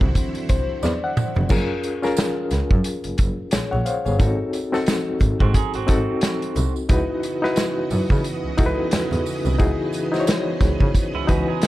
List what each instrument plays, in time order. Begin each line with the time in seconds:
Already playing: string machine D3 C4 E4 F#4, reed electric piano E3 F#3 C4 A4 C5
0.01 double bass C2, kick
0.15 kick, closed hi-hat, tambourine
0.35 closed hi-hat
0.49 double bass C2, reed electric piano C5, kick, closed hi-hat, tambourine
0.83 double bass E2, reed electric piano D5, snare, tambourine
1.04 reed electric piano F#5
1.17 mid tom, tambourine
1.36 double bass F1, floor tom
1.49 double bass F#1, reed electric piano C#4 F4 G#4 A#4, kick, crash, tambourine
1.83 closed hi-hat, tambourine
2.02 reed electric piano C#4 F4 G#4 A#4, snare, tambourine
2.17 snare, closed hi-hat, tambourine
2.50 double bass C#2, snare, closed hi-hat, tambourine
2.71 double bass F#2, kick
2.84 closed hi-hat, tambourine
3.04 double bass F#1, closed hi-hat
3.18 double bass F#1, kick, closed hi-hat, tambourine
3.51 double bass A#1, reed electric piano G#4 C#5, snare, closed hi-hat, tambourine
3.71 double bass A#1, reed electric piano C#5 F#5
3.86 reed electric piano C5 F5, closed hi-hat, tambourine
4.05 double bass G1, reed electric piano G#4 C#5, tambourine
4.19 double bass G#1, reed electric piano C4 D#4 F#4 A4, kick, closed hi-hat, tambourine
4.53 closed hi-hat, tambourine
4.72 reed electric piano C4 D#4 F#4 A4, snare, tambourine
4.86 snare, closed hi-hat, tambourine
5.21 double bass G#1, kick, closed hi-hat, tambourine
5.40 double bass G#2, clean electric guitar C4 F#4, kick
5.54 clean electric guitar D#4 G#4, kick, closed hi-hat, tambourine
5.74 double bass G#1, clean electric guitar C4 F#4, closed hi-hat
5.87 double bass G#1, reed electric piano C4 D#4 F#4 A4, kick, closed hi-hat, tambourine
6.21 snare, closed hi-hat, tambourine
6.42 closed hi-hat
6.56 double bass C2, closed hi-hat, tambourine
6.76 tambourine
6.89 double bass C#2, string machine C#3 E3 B3 F#4 D#5, reed electric piano D#4 E4 F#4 B4, kick, closed hi-hat, tambourine
7.23 closed hi-hat, tambourine
7.42 reed electric piano D#4 E4 F#4 B4, snare
7.56 snare, closed hi-hat, tambourine
7.90 double bass F#2, open hi-hat, tambourine
8.10 double bass C#3, kick, tambourine
8.24 closed hi-hat, tambourine
8.44 double bass C#2
8.57 double bass C#2, reed electric piano D#4 E4 F#4 A4, kick, closed hi-hat, tambourine
8.66 reed electric piano B4
8.91 double bass E2, snare, closed hi-hat, tambourine
9.11 double bass E2, closed hi-hat
9.26 open hi-hat, tambourine
9.46 double bass C2, tambourine
9.59 double bass C#2, reed electric piano D#4 E4 F#4 G#4, string machine G#4, kick, closed hi-hat, tambourine
9.93 closed hi-hat, tambourine
10.12 reed electric piano D#4 E4 F#4 C5, snare, tambourine
10.20 reed electric piano C#5
10.27 snare, closed hi-hat, tambourine
10.61 double bass C#2, kick, snare, closed hi-hat, tambourine
10.80 double bass C#3, kick
10.95 kick, closed hi-hat, tambourine
11.14 double bass C#2, clean electric guitar B3 E4
11.27 double bass C#2, reed electric piano E3 D#4 F#4 B4, clean electric guitar C#4 F#4, kick, closed hi-hat, tambourine
11.48 clean electric guitar D#4 G#4
11.62 snare, closed hi-hat, tambourine